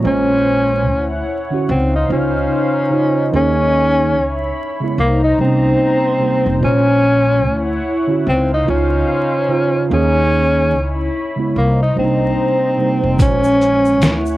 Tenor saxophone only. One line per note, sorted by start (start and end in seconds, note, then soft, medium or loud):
0.07 1.09 C#4 loud
1.71 1.92 C4 medium
1.95 2.09 D#4 medium
2.12 3.30 C#4 medium
3.36 4.37 C#4 loud
4.99 5.21 A#3 medium
5.24 5.38 D#4 medium
5.41 6.59 C4 medium
6.64 7.66 C#4 loud
8.28 8.50 C4 medium
8.54 8.67 D#4 medium
8.70 9.88 C#4 medium
9.93 10.95 C#4 loud
11.57 11.79 A#3 medium
11.82 11.96 D#4 medium
11.99 13.17 C4 medium
13.22 14.24 C#4 loud